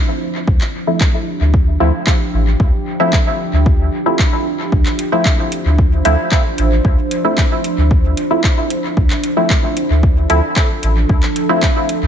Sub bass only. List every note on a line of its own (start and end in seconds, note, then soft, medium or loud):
0.47 0.59 D2 loud
1.40 1.77 D2 medium
1.80 1.91 D2 medium
2.33 2.55 A1 medium
2.60 2.71 D2 loud
3.53 3.89 D2 loud
4.72 4.83 D2 loud
5.65 6.02 D2 medium
6.05 6.16 D2 loud
6.58 6.80 A1 medium
6.85 6.96 D2 loud
7.78 8.14 D2 loud
8.97 9.08 D2 medium
9.90 10.26 D2 medium
10.30 10.41 D2 medium
10.83 11.05 A1 medium
11.09 11.21 D2 loud
12.02 12.07 D2 loud